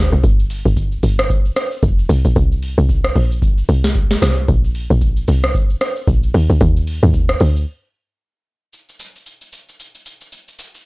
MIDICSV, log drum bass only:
0, 0, Header, 1, 2, 480
1, 0, Start_track
1, 0, Tempo, 530973
1, 213, Time_signature, 4, 2, 24, 8
1, 9814, End_track
2, 0, Start_track
2, 0, Title_t, "Log drum bass"
2, 0, Program_c, 0, 39
2, 0, Note_on_c, 0, 38, 94
2, 104, Note_off_c, 0, 38, 0
2, 113, Note_on_c, 0, 36, 89
2, 208, Note_off_c, 0, 36, 0
2, 214, Note_on_c, 0, 31, 112
2, 570, Note_off_c, 0, 31, 0
2, 592, Note_on_c, 0, 31, 102
2, 912, Note_off_c, 0, 31, 0
2, 933, Note_on_c, 0, 31, 100
2, 1159, Note_off_c, 0, 31, 0
2, 1653, Note_on_c, 0, 29, 104
2, 1878, Note_off_c, 0, 29, 0
2, 1892, Note_on_c, 0, 36, 112
2, 2024, Note_off_c, 0, 36, 0
2, 2033, Note_on_c, 0, 34, 91
2, 2127, Note_off_c, 0, 34, 0
2, 2135, Note_on_c, 0, 36, 112
2, 2490, Note_off_c, 0, 36, 0
2, 2512, Note_on_c, 0, 36, 110
2, 2833, Note_off_c, 0, 36, 0
2, 2853, Note_on_c, 0, 34, 99
2, 3209, Note_off_c, 0, 34, 0
2, 3334, Note_on_c, 0, 36, 106
2, 3785, Note_off_c, 0, 36, 0
2, 3815, Note_on_c, 0, 36, 97
2, 4040, Note_off_c, 0, 36, 0
2, 4054, Note_on_c, 0, 34, 107
2, 4410, Note_off_c, 0, 34, 0
2, 4433, Note_on_c, 0, 34, 111
2, 4753, Note_off_c, 0, 34, 0
2, 4775, Note_on_c, 0, 36, 91
2, 4999, Note_off_c, 0, 36, 0
2, 5492, Note_on_c, 0, 34, 98
2, 5718, Note_off_c, 0, 34, 0
2, 5735, Note_on_c, 0, 39, 117
2, 5865, Note_off_c, 0, 39, 0
2, 5873, Note_on_c, 0, 38, 93
2, 5968, Note_off_c, 0, 38, 0
2, 5974, Note_on_c, 0, 39, 115
2, 6330, Note_off_c, 0, 39, 0
2, 6354, Note_on_c, 0, 39, 100
2, 6673, Note_off_c, 0, 39, 0
2, 6696, Note_on_c, 0, 38, 105
2, 6920, Note_off_c, 0, 38, 0
2, 9814, End_track
0, 0, End_of_file